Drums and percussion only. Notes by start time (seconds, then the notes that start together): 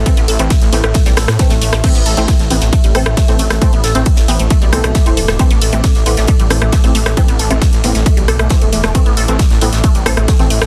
0.06 kick, closed hi-hat, ride
0.17 closed hi-hat
0.28 closed hi-hat, open hi-hat
0.39 closed hi-hat
0.50 kick, snare, closed hi-hat, ride
0.62 snare, closed hi-hat
0.73 open hi-hat
0.84 cross-stick, closed hi-hat
0.94 kick, snare, closed hi-hat, ride
1.06 snare, closed hi-hat
1.17 cross-stick, snare, closed hi-hat, open hi-hat
1.28 cross-stick, snare, closed hi-hat
1.39 kick, snare, closed hi-hat, ride
1.50 snare, closed hi-hat
1.62 closed hi-hat, open hi-hat
1.73 cross-stick, snare, closed hi-hat
1.84 kick, closed hi-hat, crash, ride
1.95 closed hi-hat
2.06 closed hi-hat, open hi-hat
2.17 closed hi-hat
2.28 kick, snare, closed hi-hat, ride
2.39 snare, closed hi-hat
2.50 closed hi-hat, open hi-hat
2.61 snare, closed hi-hat
2.73 kick, closed hi-hat, ride
2.84 closed hi-hat
2.95 cross-stick, closed hi-hat, open hi-hat
3.06 cross-stick, closed hi-hat
3.17 kick, snare, closed hi-hat, ride
3.28 snare, closed hi-hat
3.39 closed hi-hat, open hi-hat
3.50 cross-stick, snare, closed hi-hat
3.62 kick, closed hi-hat, ride
3.73 closed hi-hat
3.84 snare, closed hi-hat, open hi-hat
3.95 snare, closed hi-hat
4.06 kick, closed hi-hat, ride
4.17 snare, closed hi-hat
4.28 snare, open hi-hat
4.39 closed hi-hat
4.50 kick, closed hi-hat, ride
4.62 closed hi-hat
4.73 cross-stick, closed hi-hat, open hi-hat
4.84 cross-stick, closed hi-hat
4.95 kick, snare, closed hi-hat, ride
5.06 closed hi-hat
5.17 closed hi-hat, open hi-hat
5.28 cross-stick, snare, closed hi-hat
5.39 kick, closed hi-hat, ride
5.51 closed hi-hat
5.61 closed hi-hat, open hi-hat
5.72 closed hi-hat
5.84 kick, snare, closed hi-hat, ride
5.95 snare, closed hi-hat
6.06 closed hi-hat, open hi-hat
6.17 snare, closed hi-hat
6.27 kick, closed hi-hat, ride
6.39 closed hi-hat
6.50 cross-stick, closed hi-hat, open hi-hat
6.62 cross-stick
6.72 kick, snare, closed hi-hat, ride
6.84 snare, closed hi-hat
6.95 closed hi-hat, open hi-hat
7.06 cross-stick, snare, closed hi-hat
7.17 kick, closed hi-hat, ride
7.28 closed hi-hat
7.39 closed hi-hat, open hi-hat
7.51 closed hi-hat
7.62 kick, snare, closed hi-hat, ride
7.72 snare, closed hi-hat
7.84 closed hi-hat, open hi-hat
7.95 snare, closed hi-hat
8.06 kick, closed hi-hat, ride
8.17 closed hi-hat
8.28 cross-stick, closed hi-hat, open hi-hat
8.39 cross-stick, closed hi-hat
8.49 kick, snare, closed hi-hat, ride
8.62 closed hi-hat
8.72 closed hi-hat, open hi-hat
8.83 cross-stick, snare, closed hi-hat
8.95 kick, closed hi-hat, ride
9.06 closed hi-hat
9.17 closed hi-hat, open hi-hat
9.28 closed hi-hat
9.39 kick, snare, closed hi-hat, ride
9.50 snare, closed hi-hat
9.61 closed hi-hat, open hi-hat
9.73 snare, closed hi-hat
9.84 kick, closed hi-hat, ride
9.95 closed hi-hat
10.06 cross-stick, closed hi-hat, open hi-hat
10.17 cross-stick, closed hi-hat
10.28 kick, snare, closed hi-hat, ride
10.39 snare, closed hi-hat
10.50 closed hi-hat, open hi-hat
10.61 cross-stick, snare, closed hi-hat